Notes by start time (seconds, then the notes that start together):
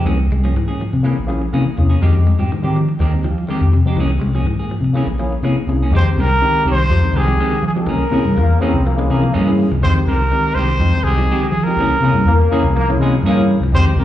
0.04 C2 E3 A#3 C#4 G#4
0.19 muted clean electric guitar stroke
0.30 C2 G#3
0.44 F3 A#3 C#4 G#4
0.54 G#2 E3, muted clean electric guitar stroke
0.68 A#3 C#4 G#4
0.81 F3
0.93 C3, muted clean electric guitar stroke
1.03 E3 A#3 C#4 E4 G#4, muted clean electric guitar stroke
1.17 A#1, muted clean electric guitar stroke
1.27 F3 A#3 C#4 E4 G#4, muted clean electric guitar stroke
1.42 muted clean electric guitar stroke
1.52 C3 E3 A#3 C#4 E4 G#4
1.66 muted clean electric guitar stroke
1.77 E2 C3 A#3 C#4 E4 G#4, muted clean electric guitar stroke
1.90 A#3 C#4 G#4
2.02 F2 D#3 F3 G#3 C4 D#4 G4
2.15 muted clean electric guitar stroke
2.27 G#3
2.39 G#2 F3 G#3 C4 G4
2.52 D#3, muted clean electric guitar stroke
2.63 D#3 G#3 C4 D#4 G4
2.76 F3
2.89 muted clean electric guitar stroke
2.99 D#2 D#3 G#3 C4 D#4 G4
3.14 muted clean electric guitar stroke
3.24 F3, muted clean electric guitar stroke
3.38 muted clean electric guitar stroke
3.48 D#3 G#3 C4 D#4 G4
3.61 F2, muted clean electric guitar stroke
3.73 C3, muted clean electric guitar stroke
3.85 F3 G#3 C4 D#4 G4
3.96 C2 E3 A#3 C#4
4.00 G#4
4.12 muted clean electric guitar stroke
4.19 C2 G#3
4.35 F3 A#3 C#4 G#4
4.44 G#2 E3, muted clean electric guitar stroke
4.59 A#3 G#4, muted clean electric guitar stroke
4.71 F3
4.80 C3, muted clean electric guitar stroke
4.93 E3 A#3 C#4 E4 G#4
5.06 A#1, muted clean electric guitar stroke
5.19 F3 A#3 C#4 E4 G#4, muted clean electric guitar stroke
5.32 muted clean electric guitar stroke
5.42 C3 E3 A#3 C#4 E4 G#4, muted clean electric guitar stroke
5.57 muted clean electric guitar stroke
5.67 C2 C3 A#3 C#4 E4 G#4, muted clean electric guitar stroke
5.83 A#3 C#4 G#4
5.91 F2 D#3 G#3 C4 D#4 G4, muted clean electric guitar stroke
5.95 G4 C5
6.16 C2 C3 D#3 G#3 C4 G4 A#4
6.31 muted clean electric guitar stroke
6.41 D#3 G#3 C4 D#4 G4, muted clean electric guitar stroke
6.56 muted clean electric guitar stroke
6.65 C2 D#3 G#3 C4 G4
6.72 C5
6.80 muted clean electric guitar stroke
6.88 F2 F3 G#3 C4 D#4 G4
7.04 D#3, muted clean electric guitar stroke
7.13 C2 D#3 G#3 C4 G4
7.17 G#4
7.26 F3 G#3 C4 D#4 G4, muted clean electric guitar stroke
7.40 D#3 G#3 C4 G4
7.52 D#3
7.62 F3, muted clean electric guitar stroke
7.67 G#4
7.75 F3 G#3 C4 D#4 G4, muted clean electric guitar stroke
7.79 A#4
7.86 C2 E3 A#3 C#4 G#4
8.11 C3 E3 A#3 C#4 E4 G#4
8.25 G2, muted clean electric guitar stroke
8.37 E2 E3 A#3, muted clean electric guitar stroke
8.50 muted clean electric guitar stroke
8.60 E3 A#3 C4 C#4 E4 G#4
8.74 C2, muted clean electric guitar stroke
8.85 F3 A#3
8.96 E3 G#3 A#3 C#4 E4 G#4, muted clean electric guitar stroke
9.09 C3 E3 A#3 C#4 G#4
9.23 F3, muted clean electric guitar stroke
9.34 G2 E3 G#3 A#3 C#4 G#4
9.46 E3 A#3 C#4 E4 G#4
9.59 muted clean electric guitar stroke
9.71 C2 F3, muted clean electric guitar stroke
9.81 F2 D#3 G#3 C4 D#4 G4 C5, muted clean electric guitar stroke
10.06 C2 C3 D#3 G#3 C4 G4 A#4
10.21 muted clean electric guitar stroke
10.30 D#3 G#3 C4 D#4 G4, muted clean electric guitar stroke
10.46 muted clean electric guitar stroke
10.55 C2 D#3 G#3 C4 C5
10.59 G4
10.71 muted clean electric guitar stroke
10.79 F2 F3 G#3 C4 D#4 G4
10.95 D#3, muted clean electric guitar stroke
11.03 C2 D#3 G#3 G#4
11.07 C4 G4
11.16 F3 G#3 C4 D#4 G4
11.20 muted clean electric guitar stroke
11.31 D#3 G#3 C4 G4
11.43 D#3
11.50 F3 G#4
11.55 muted clean electric guitar stroke
11.64 F3 G#3 C4 D#4 G4 A#4
11.68 muted clean electric guitar stroke
11.76 C2 E3 A#3 C#4
11.80 G#4
12.00 C3 E3 A#3 C#4 E4 G#4
12.04 C#4 G#4
12.13 G2, muted clean electric guitar stroke
12.25 E2 E3 A#3, muted clean electric guitar stroke
12.42 muted clean electric guitar stroke
12.50 E3 A#3 C#4 E4 G#4
12.63 C2, muted clean electric guitar stroke
12.76 F3 A#3
12.88 E3 A#3 C#4 E4 G#4, muted clean electric guitar stroke
12.97 C3 E3 G#3
13.01 A#3 C#4 G#4
13.14 F3, muted clean electric guitar stroke
13.22 G2 E3 A#3 C#4 G#4
13.36 E3 A#3 C#4 E4 G#4
13.51 muted clean electric guitar stroke
13.60 C2 F3, muted clean electric guitar stroke
13.72 F2 D#3 G#3 C4 D#4 G4 C5
13.96 C2 D#3 G#3 A#4
14.00 C3 C4 G4